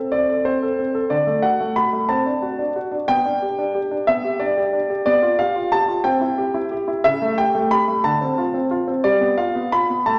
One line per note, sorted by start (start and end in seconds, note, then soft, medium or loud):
0.00 0.10 C4 soft
0.00 0.12 E5 medium
0.12 0.28 C4 soft
0.12 0.42 D5 medium
0.29 0.47 A4 soft
0.45 0.63 C4 soft
0.45 1.11 C5 medium
0.62 0.80 A4 soft
0.79 0.96 C4 soft
0.95 1.11 A4 soft
1.10 1.27 D3 medium
1.10 1.44 D5 medium
1.27 1.45 A3 soft
1.42 1.61 F#4 soft
1.42 1.73 F#5 medium
1.60 1.78 A3 soft
1.76 1.95 F#4 soft
1.76 2.10 B5 medium
1.93 2.10 A3 soft
2.09 2.26 C4 medium
2.09 2.69 A5 medium
2.26 2.44 D4 soft
2.42 2.61 F#4 soft
2.59 2.77 D4 medium
2.76 2.94 F#4 soft
2.92 3.09 D4 soft
3.08 3.25 B3 medium
3.08 4.08 G5 loud
3.25 3.43 D4 medium
3.42 3.60 G4 soft
3.58 3.76 D4 medium
3.75 3.93 G4 medium
3.91 4.09 D4 soft
4.07 4.24 B3 medium
4.07 4.41 E5 loud
4.24 4.42 G4 soft
4.40 4.58 D4 medium
4.40 5.02 D5 medium
4.57 4.75 G4 medium
4.73 4.91 D4 medium
4.90 5.06 G4 medium
5.06 5.22 B3 medium
5.06 5.36 D5 medium
5.22 5.40 F4 medium
5.39 5.57 G4 medium
5.39 5.69 F5 medium
5.56 5.73 F4 medium
5.72 5.89 G4 medium
5.72 5.92 A5 loud
5.88 6.05 F4 medium
6.04 6.21 C4 medium
6.04 6.64 G5 medium
6.21 6.39 E4 medium
6.38 6.55 G4 medium
6.54 6.72 E4 medium
6.71 6.89 G4 medium
6.88 7.04 E4 medium
7.04 7.21 C#3 medium
7.04 7.34 E5 loud
7.22 7.39 A3 medium
7.38 7.55 G4 medium
7.38 7.58 G5 medium
7.55 7.72 A3 medium
7.71 7.89 G4 medium
7.71 8.01 B5 loud
7.88 8.04 A3 medium
8.04 8.21 D3 medium
8.04 8.64 A5 medium
8.21 8.38 C4 medium
8.38 8.55 F4 medium
8.54 8.71 C4 medium
8.71 8.88 F4 medium
8.88 9.04 C4 medium
9.04 9.21 G3 medium
9.04 9.35 D5 medium
9.21 9.39 B3 medium
9.38 9.56 F4 soft
9.38 9.72 F5 medium
9.55 9.73 B3 medium
9.72 9.91 F4 medium
9.72 10.07 B5 medium
9.90 10.07 B3 soft
10.06 10.19 A3 medium
10.06 10.19 A5 medium